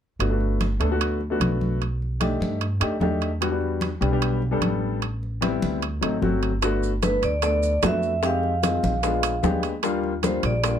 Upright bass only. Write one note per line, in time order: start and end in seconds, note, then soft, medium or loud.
0.19 0.76 G1 medium
0.80 1.36 D2 medium
1.40 2.35 B1 medium
2.40 2.78 G2 medium
2.81 3.00 F2 medium
3.00 3.95 E2 medium
4.01 4.58 B1 medium
4.61 5.56 A1 medium
5.62 6.00 D2 medium
6.02 6.21 A1 medium
6.22 7.17 G1 medium
7.22 7.79 D2 medium
7.83 8.77 F2 medium
8.83 9.39 A#1 medium
9.43 10.37 D#2 medium
10.43 10.79 A#1 loud